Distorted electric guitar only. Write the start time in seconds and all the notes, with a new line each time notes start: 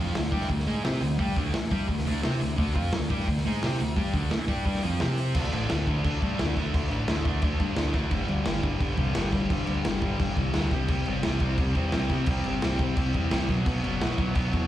Already playing: F3 C4
0.00 F4
0.14 D3 A3
0.31 G3 D4 G4
0.49 D3 A3
0.67 G#3 D#4 G#4
0.84 C4 G4 C5
1.01 D3 A3
1.19 G3 D4 G4
1.36 D3 A3 D4
1.54 muted distorted electric guitar stroke
1.70 G3 D4 G4
1.88 D3 A3
2.05 D3 A3 D4
2.23 C4 G4 C5
2.41 D3 A3
2.57 D3 A3 D4
2.74 F3 C4 F4
2.93 D3 A3
3.10 G3 D4 G4
3.28 D3 A3
3.45 G#3 D#4 G#4
3.62 C4 G4 C5
3.79 D3 A3
3.96 G3 D4 G4
4.13 D3 A3 D4
4.31 muted distorted electric guitar stroke
4.48 G3 D4 G4
4.66 G3 D4 G4
4.83 F3 C4 F4
5.01 C4 G4 C5
5.35 D3 A3 D4
5.53 D3 A3 D4
5.70 D3 A3 D4
5.87 D3 A3 D4
6.04 D3 A3 D4
6.21 D3 A3 D4
6.39 D3 A3 D4
6.56 D3 A3 D4
6.74 D3 A3 D4
6.91 D3 A3 D4
7.08 D3 A3 D4
7.25 D3 A3 D4
7.42 D3 A3 D4
7.59 D3 A3 D4
7.76 D3 A3 D4
7.93 D3 A3 D4
8.10 G2 D3 G3
8.28 G2 D3 G3
8.44 G2 D3 G3
8.63 G2 D3 G3
8.79 G2 D3 G3
8.96 G2 D3 G3
9.15 G2 D3 G3
9.32 G2 D3 G3
9.50 G2 D3 G3
9.66 G2 D3 G3
9.84 G2 D3 G3
10.01 G2 D3 G3
10.20 G2 D3 G3
10.38 G2 D3 G3
10.54 G2 D3 G3
10.72 C3 G3 C4
10.89 C3 G3 C4
11.07 C3 G3 C4
11.24 C3 G3 C4
11.41 C3 G3 C4
11.59 C3 G3 C4
11.76 C3 G3 C4
11.94 C3 G3 C4
12.11 C3 G3 C4
12.28 C3 G3 C4
12.46 C3 G3 C4
12.63 C3 G3 C4
12.80 C3 G3 C4
12.97 C3 G3 C4
13.15 C3 G3 C4
13.31 C3 G3 C4
13.49 B2 F#3 B3
13.66 B2 F#3 B3
13.84 B2 F#3 B3
14.02 B2 F#3 B3
14.18 B2 F#3 B3
14.35 B2 F#3 B3
14.53 B2 F#3 B3